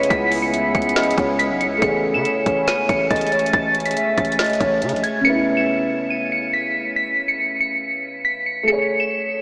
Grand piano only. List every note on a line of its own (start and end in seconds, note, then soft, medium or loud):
0.00 1.76 C#3 medium
0.00 1.78 B3 medium
0.00 1.80 E4 medium
1.78 5.19 A3 medium
1.82 5.21 G#4 medium
1.86 5.23 C#5 medium
5.20 8.61 C#3 medium
5.25 8.64 B3 medium
5.29 8.66 E4 medium
8.63 9.42 A3 medium
8.68 9.42 G#4 medium
8.72 9.42 C#5 medium